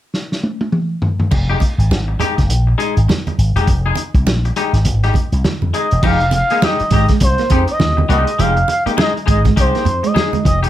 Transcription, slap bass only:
1.31 F1
1.78 G#1
1.91 G#1
2.38 F1
2.50 A#1
2.97 G#1
3.38 G#1
3.56 E1
3.67 F1
4.14 C2
4.26 A#1
4.73 G#1
4.85 G#1
5.32 C2
5.62 F2
5.92 E1
6.03 F1
6.80 muted slap bass stroke
6.91 G#1
7.21 C2
7.50 F2
7.80 D#2
8.09 C2
8.39 F1
8.86 muted slap bass stroke
9.27 G#1
9.57 C2
9.86 F2
10.45 F1
10.63 E1

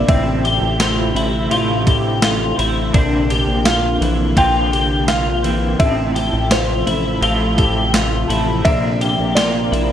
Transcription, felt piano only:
0.09 E5
3.65 F5
4.38 G5
5.08 F5
5.80 E5
6.52 C5
8.65 E5
9.35 D5

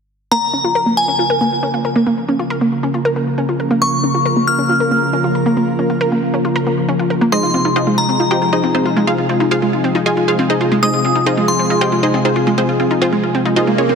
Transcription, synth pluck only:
7.32 D#4 G#4 C5 D#5
7.43 F4
7.54 F4
7.65 F4
7.76 D#4 G#4 C5 D#5
7.87 F4
7.98 F4
8.20 F4
8.31 G4 C5 D#5 G5
8.42 F4
8.53 D#4 G#4 C5 D#5
8.64 F4
8.75 C4 F4 G#4 C5
8.86 F4
8.97 F4
9.07 F4 G#4 C5 F5
9.18 F4
9.29 F4
9.40 F4
9.51 F4 G#4 C5 F5
9.62 F4
9.73 F4
9.95 F4
10.06 G#4 D#5 F5 G#5
10.17 F4
10.28 F4 G#4 C5 F5
10.39 F4
10.50 D#4 G#4 C5 D#5
10.61 F4
10.72 F4
10.83 D#4 G#4 C5 D#5
10.94 F4
11.05 F4
11.15 F4
11.26 D#4 G#4 C5 D#5
11.37 F4
11.48 F4
11.70 F4
11.81 G4 C5 D#5 G5
11.92 F4
12.03 D#4 G#4 C5 D#5
12.14 F4
12.25 C4 F4 G#4 C5
12.36 F4
12.47 F4
12.58 C4 F4 G#4 C5
12.69 F4
12.80 F4
12.91 F4
13.02 C4 F4 G#4 C5
13.13 F4
13.23 F4
13.46 F4
13.56 D#4 G#4 C5 D#5
13.67 F4
13.78 C#4 F4 G#4 C#5
13.89 F4

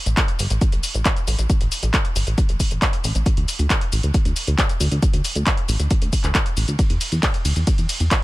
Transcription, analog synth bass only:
0.06 A1
0.39 G1
0.50 A1
0.72 A1
0.94 A1
1.28 A1
1.39 A1
1.61 A1
1.83 A1
2.16 G1
2.27 A1
2.49 A1
2.71 A1
3.04 A1
3.15 A1
3.37 D2
3.59 D2
3.92 A1
4.03 D2
4.25 D2
4.47 D2
4.80 D2
4.91 D2
5.13 D2
5.36 D2
5.69 A1
5.80 D2
6.02 D2
6.24 D2
6.57 A1
6.68 D2
6.90 E2
7.12 E2
7.45 D2
7.56 E2
7.78 E2
8.00 E2

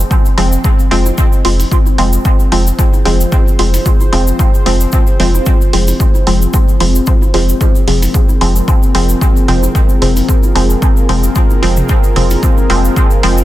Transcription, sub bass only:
0.38 F1
0.91 F1
1.45 F1
1.98 F1
2.52 F1
3.05 F1
3.59 F1
4.13 F1
4.66 F1
5.20 F1
5.73 F1
6.27 F1
6.80 F1
7.34 F1
7.88 F1
8.41 F1
8.95 F1
9.48 F1
10.02 F1
10.55 F1
11.09 F1
11.63 F1
12.16 F1
12.70 F1
13.23 F1

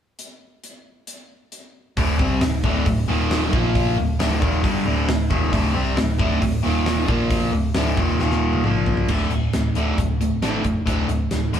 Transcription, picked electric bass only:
1.97 D1
2.19 C2
2.42 D1
2.63 D1
2.86 D1
3.08 D#1
3.53 A#1
3.98 D1
4.20 D1
4.42 D#1
4.64 G1
4.86 D1
5.09 D1
5.31 D#1
5.53 D1
5.77 C2
5.99 D1
6.19 D1
6.42 D1
6.64 D#1
7.09 A#1
7.51 D1
7.75 D1
7.98 D#1
8.19 D#1
8.64 A#1
9.09 D1
9.31 D1
9.54 D1
9.75 D1
9.98 D1
10.42 A1
10.65 F1
10.87 D1
11.08 D1
11.31 D1
11.53 E1

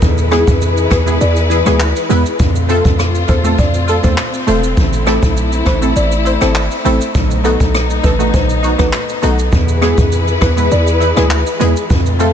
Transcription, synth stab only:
0.31 G#3 B3 E4 G#4
0.90 E4 G#4
1.06 G#3 B3 E4 G#4
1.50 E4 G#4
1.65 G#3 B3 E4 G#4
2.09 G#3 B3 E4 B4
2.69 A3 C4 F4 A4
3.28 F4 A4
3.44 A3 C4 F4 A4
3.87 F4 A4
4.03 A3 C4 F4 A4
4.47 A3 C4 F4 C5
5.06 A3 C4 E4 A4
5.66 E4 B4
5.81 A3 C4 E4 A4
6.25 E4 C5
6.41 A3 C4 E4 A4
6.84 A3 C4 E4 A4
7.44 A3 B3 D#4 F#4
8.03 D#4 A4
8.19 A3 B3 D#4 F#4
8.63 D#4 F#4
8.78 A3 B3 D#4 F#4
9.22 A3 B3 D#4 F#4
9.81 G#3 B3 E4 G#4
10.41 E4 B4
10.56 G#3 B3 E4 B4
11.00 E4 B4
11.16 G#3 B3 E4 G#4
11.59 G#3 B3 E4 G#4
12.19 A3 C4 F4 A4

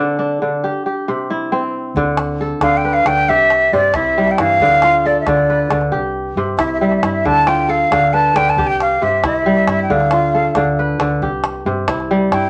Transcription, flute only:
2.62 F5
2.77 G5
2.93 F5
3.07 G5
3.29 E5
3.73 D5
3.95 E5
4.31 G5
4.40 F5
5.06 D5
5.20 E5
5.28 D5
6.58 E5
6.65 E5
6.73 E5
6.81 E5
6.88 E5
6.97 E5
7.05 E5
7.12 E5
7.26 A5
7.47 G5
7.70 F5
8.13 A5
8.36 G5
8.50 A5
8.67 G5
8.82 F5
9.03 E5
9.27 E5
9.83 G5
9.92 F5
12.32 G5

